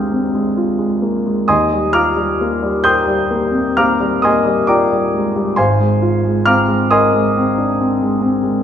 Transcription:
grand piano
Already playing: D#2 G#3 C4 D4 G4 D#5 F5 G#5 A#5 C6 D6 D#6 F6 G6
0.12 C4
0.35 G#3
0.57 F4
0.79 G#3
1.02 A#3
1.27 G#3
1.48 D#2 D#5 G#5 C6 D#6
1.72 G3
1.93 F4 F5 A#5 D6 F6
2.17 G3
2.41 A#3
2.63 G3
2.84 A#4 G5 C6 D#6 G6
3.08 G3
3.31 A#3
3.52 C4
3.77 A#3 F5 A#5 D6 F6
4.00 G3
4.22 A#3 D#5 G#5 C6 D#6
4.45 G3
4.67 F4 D5 G5 A#5 D6
4.92 G3
5.14 G#3
5.36 G3
5.56 G#1 C5 F5 G#5 C6
5.80 G#3
6.02 F4
6.24 G#3
6.46 C4 F5 A#5 D6 F6
6.68 G#3
6.91 A#4 D#5 G#5 C6 D#6
7.12 G#3
7.37 C4
7.58 D4
7.81 C4
8.02 G#3
8.22 C4
8.43 G#3

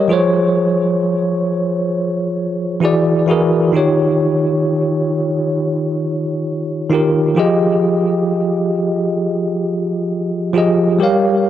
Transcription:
tine electric piano
Already playing: G3 G4 A#4 C#5 D#5
0.08 F3 F4 G#4 C5
0.12 C#5
2.80 E3 E4 F#4 G#4
2.85 D5
3.26 E3 E4 F#4 G#4
3.31 A#4
3.72 D#3 D#4 F4 G4
3.77 C#5
6.90 D#3 D#4 F4 G4
6.94 A#4
7.35 F3 F4 G4 G#4
7.39 D#5
10.53 F3 F4 G4 G#4
10.58 D#5
10.98 G3 G4 A#4 C#5
11.03 F5

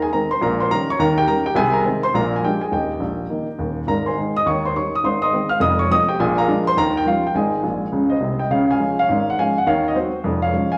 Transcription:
upright piano
0.02 G#4 G#5
0.12 D#3 G#3 C4 A#4 A#5
0.31 C5 C6
0.41 A#1 A#2 A#4 A#5
0.60 C5 C6
0.71 D#3 G3 C#4 A#4 A#5
0.90 C#5 C#6
0.99 D#2 D#3 A#4 A#5
1.18 G4 G5
1.27 D#3 G3 C#4 A#4 A#5
1.46 G4 G5
1.55 C2 C3 G#4 G#5
1.73 A#4 A#5
1.84 D#3 G#3 C4
2.03 C5 C6
2.14 A#1 A#2 A#4 A#5
2.36 G#5
2.44 F3 G#3 D4 G4 G5
2.61 G#4 G#5
2.72 D#1 D#2 G4 D#5 G5
3.00 A#1
3.30 D#3 A#3 D#4
3.59 D#1 D#2
3.87 G#1 G#2 A#4 A#5
4.06 C5 G#5 C6
4.17 D#3 G#3 D#4
4.36 D#5 D#6
4.46 D#2 D#3 C#5 C#6
4.65 C5 C6
4.75 D#3 G3 D#4 C#5 C#6
4.95 D#6
5.04 G#1 G#2 C5 C6
5.22 D#5 C6 D#6
5.33 D#3 G#3 C4
5.49 F5 F6
5.60 F1 F2 D#5 D#6
5.79 C#5 C#6
5.90 F3 A3 C4 D#5 D#6
6.09 G4 G5
6.20 A#1 A#2 G#4 G#5
6.38 A#4 F5 A#5
6.48 F3 G#3 D4
6.67 C5 C6
6.77 D#2 D#3 A#4 A#5
6.97 G5
7.06 F3 G3 C#4 F4 F5
7.27 G5
7.35 G#1 G#2 G#4 D#5 G#5
7.63 A#1 A#2
7.92 C#2 C#3
8.10 C5 D#5
8.20 C2 C3
8.39 D#5 G5
8.50 C#2 C#3 C#5 F5
8.71 F5 G#5
8.80 F3 G#3 C#4
8.99 C#5 F5
9.09 G#1 G#2
9.30 F#5
9.39 F3 G#3 C#4 F5 G#5
9.58 F#5
9.67 D#2 D#3 C#5 F5
9.88 D#5
9.95 F#3 C4 F#4 C5
10.24 F1 F2
10.42 C#5 F5
10.53 F3 G#3 C#4
10.72 F5 G#5

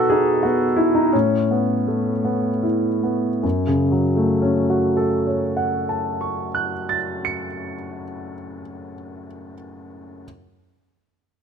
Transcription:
grand piano
Already playing: B2 B3 D#4 F#4 A4 B4
0.10 D#4 G#4
0.43 B3 F#4
0.76 D#4 E4
0.95 D#4
1.13 A2 C#4
1.51 B3
1.88 A3
2.25 B3
2.63 E4
3.03 B3
3.43 F#2
3.67 C#3
3.92 F#3
4.17 A3
4.42 C#4
4.70 F#4
4.97 A4
5.27 C#5
5.57 F#5
5.89 A5
6.21 C#6
6.55 F#6
6.89 A6
7.25 C#7

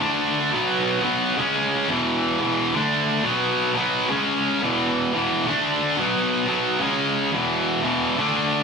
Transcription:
distorted electric guitar
0.00 D3 A3 D4
0.52 B2 F#3 B3
1.02 B2 F#3 B3
1.37 C#3 G#3 C#4
1.88 E2 B2 E3
2.40 E2 B2 E3
2.74 D3 A3 D4
3.23 B2 F#3 B3
3.74 B2 F#3 B3
4.09 C#3 G#3 C#4
4.61 E2 B2 E3
5.13 E2 B2 E3
5.46 D3 A3 D4
5.96 B2 F#3 B3
6.47 B2 F#3 B3
6.80 C#3 G#3 C#4
7.32 E2 B2 E3
7.83 E2 B2 E3
8.18 D3 A3 D4

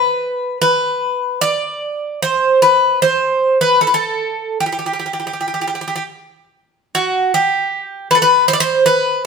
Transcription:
bouzouki
Already playing: B4
0.62 B4
1.41 D5
2.22 C5
2.62 B4
3.02 C5
3.61 B4
3.81 A4
3.87 B4
3.94 A4
4.60 G4
4.66 G4
4.72 G4
4.79 G4
4.86 G4
4.93 G4
4.99 G4
5.06 G4
5.13 G4
5.20 G4
5.27 G4
5.33 G4
5.41 G4
5.48 G4
5.54 G4
5.61 G4
5.68 G4
5.75 G4
5.81 G4
5.88 G4
5.96 G4
6.95 F#4
7.34 G4
8.11 B4
8.15 A4
8.22 B4
8.48 C5
8.53 D5
8.60 C5
8.86 B4

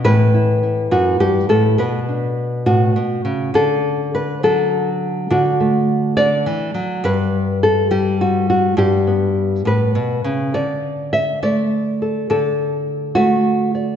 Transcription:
nylon-string guitar
0.04 A2 E3 B3 E4 B4
0.34 E4
0.63 E4
0.91 F#2 F#4
1.20 G2 G4
1.49 A2 A4
1.78 B2 B4
2.09 D4
2.66 A2 F#4
2.96 B2
3.25 C#3
3.54 D3 A4
4.15 B4
4.43 F#3 A4
5.30 D3 F#4
5.60 A3
6.17 D3 D5
6.46 E3
6.74 F#3
7.04 G2 B4
7.63 A4
7.91 G3 G4
8.21 F#4
8.50 F#4
8.77 G2 G4
9.07 B3
9.65 A2 B4
9.95 B2
10.24 C#3
10.54 D3 D5
11.13 E5
11.43 A3 D5
12.02 A4
12.30 D3 A4
13.15 A3 F#4
13.75 D5

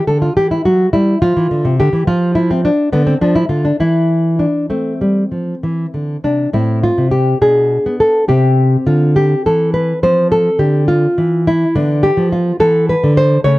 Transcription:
nylon-string guitar
0.07 D3 A4
0.22 F4
0.37 E3 G4
0.51 E4
0.65 F#3 F#4
0.93 G3 E4
1.22 F3 F4
1.37 E3
1.51 D3
1.65 C3
1.80 D3 G4
1.93 E3
2.07 F3 F4
2.35 E4
2.51 C4
2.65 D4
2.93 D3 B3
3.07 C4
3.21 F3 D4
3.35 E4
3.49 D3 F4
3.65 D4
3.80 E3 E4
4.39 D4
4.70 A3 C4
5.01 G3
5.32 F3
5.63 E3
5.94 D3
6.24 C3 D4
6.53 A2 C4 E4
6.83 F4
6.98 C3
7.11 G4
7.42 B2 D4 G#4
7.86 B3
8.00 A4
8.28 C3 C4 G4
8.86 D3 F4
9.16 G4
9.46 E3 A4
9.74 B4
10.03 F3 C4 C5
10.32 A4
10.59 D3 G4
10.88 F4
11.18 E3
11.47 E4
11.75 D3 B3 D4
12.03 G4
12.17 F3
12.32 F4
12.60 E3 B3 A4
12.89 B4
13.04 D3
13.17 C5
13.44 C#3 A3 C#5

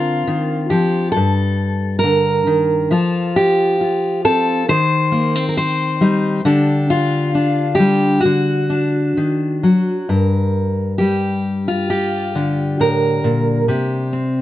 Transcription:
steel-string acoustic guitar
Already playing: D3 C4 F4 A#4
0.27 D#3
0.70 F3 G4
1.12 A4
1.16 G2
1.99 A#4
2.04 D3
2.47 D#3
2.91 F3 F4 A4
3.36 G4
3.81 F4
4.25 C4 A4
4.68 D#3 C5
5.12 A#3
5.35 C4
5.49 A#4
5.57 C5
6.01 G3 D#4
6.45 D3 D4 G4
6.90 F4
7.35 D4
7.75 G4
7.79 G3
8.20 F#4
8.25 D3
8.70 D4
9.17 D#3
9.63 F#3
10.09 G2 A#4
10.98 G3 G4
11.68 F4
11.90 G4
12.35 D3
12.79 A2 A#4
13.24 A#2
13.68 C3 G4
14.13 C4

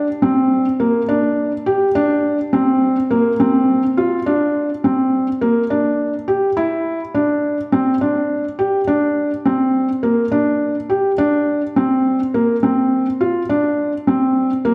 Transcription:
felt piano
0.22 C4
0.80 A#3
1.09 D4
1.66 G4
1.95 D4
2.53 C4
3.11 A#3
3.40 C4
3.97 F4
4.26 D4
4.84 C4
5.41 A#3
5.70 D4
6.28 G4
6.57 E4
7.15 D4
7.72 C4
8.01 D4
8.59 G4
8.88 D4
9.46 C4
10.03 A#3
10.32 D4
10.90 G4
11.18 D4
11.76 C4
12.34 A#3
12.63 C4
13.21 F4
13.49 D4
14.07 C4
14.65 A#3

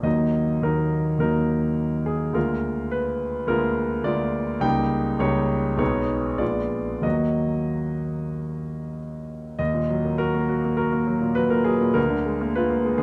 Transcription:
grand piano
0.03 D#2 F#3 A#3 D#4 D#5
0.62 D#2 F#3 A#3 D#4 A#4
1.19 D#2 F#3 A#3 D#4 A#4
2.06 G#4
2.33 D2 G#3 A#3 F4 A#4
2.91 B4
3.47 D2 G#3 A#3 F4 A#4
4.04 D2 G#3 A#3 F4 D5
4.60 C#2 G3 A#3 D#4 G5
5.19 C#2 G3 A#3 D#4 C#5
5.77 B1 G#3 B3 D#4 C#5
6.37 A#1 G#3 B3 F4 D5
7.02 D#2 F#3 A#3 F#4 D#5
9.59 D#2 D#5
9.74 A#2
9.90 F#3
10.05 A#3
10.18 F#4 A#4
10.35 A#3
10.49 F#4
10.64 A#3
10.77 F#4 A#4
10.93 A#3
11.07 F#3
11.21 A#2
11.35 F#3 B4
11.50 A#2 A#4
11.64 F#3 G#4
11.81 A#2
11.94 D2 A#4
12.10 D3
12.26 G#3
12.41 A#3
12.55 F4 B4
12.70 A#3
12.85 G#3
12.98 D3 G#4

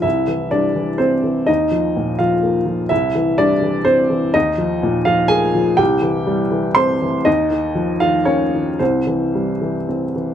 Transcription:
upright piano
0.02 C2 E4 E5
0.28 E3
0.51 G3 D4 D5
0.75 E3
0.98 C4 C5
1.24 E3
1.46 D#2 D#4 D#5
1.71 F3
1.97 A#2
2.19 F3 F4 F5
2.43 A#3
2.66 F3
2.89 C2 E4 E5
3.15 E3
3.38 G3 D4 D5
3.62 E3
3.85 C4 C5
4.10 E3
4.34 D#2 D#4 D#5
4.58 F3
4.83 A#2
5.05 F3 F4 F5
5.28 A#3 G#4 G#5
5.55 F3
5.77 C2 G4 G5
6.02 E3
6.27 G3
6.52 E3
6.75 C4 C5 C6
7.02 E3
7.25 D#2 D#4 D#5
7.51 D#3
7.75 F3
8.00 D#3 F4 F5
8.25 A#3 C#4 C#5
8.54 D#3
8.79 C2 C4 C5
9.07 E3
9.35 G3
9.62 E3
9.89 C4
10.16 E3

